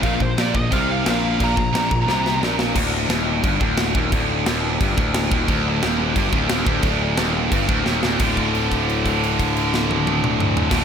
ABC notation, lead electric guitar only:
X:1
M:4/4
L:1/8
Q:1/4=176
K:Eblyd
V:1 name="Lead electric guitar"
f c d e f f f2 | b6 z2 | z8 | z8 |
z8 | z8 | z8 | z8 |]